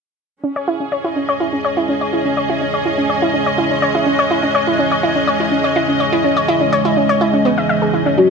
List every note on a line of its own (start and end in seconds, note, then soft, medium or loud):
0.44 8.30 C#3 medium
0.44 8.30 E3 medium
0.44 8.30 G#3 medium
0.44 0.51 C#4 medium
0.44 8.30 C#4 medium
0.44 4.27 C#5 medium
0.55 8.30 G#4 medium
0.55 0.60 C#5 medium
0.68 0.78 E4 loud
0.80 0.87 C#4 medium
0.92 0.96 C#5 loud
1.04 1.14 E4 loud
1.04 8.30 D#5 medium
1.16 1.23 C#4 medium
1.29 1.33 C#5 loud
1.40 1.51 E4 loud
1.53 1.59 C#4 medium
1.65 1.69 C#5 loud
1.77 1.87 E4 loud
1.89 1.96 C#4 medium
2.01 2.05 C#5 medium
2.13 2.23 E4 loud
2.25 2.32 C#4 medium
2.37 2.41 C#5 loud
2.50 2.59 E4 loud
2.61 2.68 C#4 medium
2.74 2.78 C#5 medium
2.85 2.96 E4 medium
2.98 3.05 C#4 medium
3.10 3.14 C#5 medium
3.22 3.32 E4 loud
3.34 3.41 C#4 medium
3.46 3.50 C#5 medium
3.58 3.69 E4 loud
3.71 3.77 C#4 medium
3.82 3.86 C#5 loud
3.95 4.05 E4 loud
4.06 4.13 C#4 medium
4.19 4.23 C#5 loud
4.31 4.41 E4 loud
4.31 8.14 D#5 medium
4.43 4.50 C#4 medium
4.55 4.59 C#5 loud
4.67 4.77 E4 loud
4.79 4.86 C#4 medium
4.92 4.95 C#5 medium
5.03 5.14 E4 loud
5.16 5.22 C#4 medium
5.27 5.32 C#5 loud
5.40 5.50 E4 loud
5.52 5.59 C#4 medium
5.64 5.68 C#5 medium
5.76 5.86 E4 loud
5.88 5.95 C#4 medium
6.00 6.04 C#5 medium
6.13 6.22 E4 loud
6.24 6.31 C#4 medium
6.37 6.41 C#5 medium
6.48 6.59 E4 loud
6.61 6.67 C#4 medium
6.73 6.77 C#5 loud
6.85 6.95 E4 loud
6.97 7.04 C#4 medium
7.09 7.13 C#5 loud
7.21 7.31 E4 loud
7.34 7.40 C#4 medium
7.45 7.49 B3 loud
7.58 7.62 E5 medium
7.69 7.76 E5 medium
7.82 7.86 G#4 medium
7.94 8.04 E4 medium
8.06 8.10 C#4 medium
8.18 8.30 B3 medium
8.18 8.25 C#4 medium
8.18 8.30 F#4 loud
8.22 8.30 B4 medium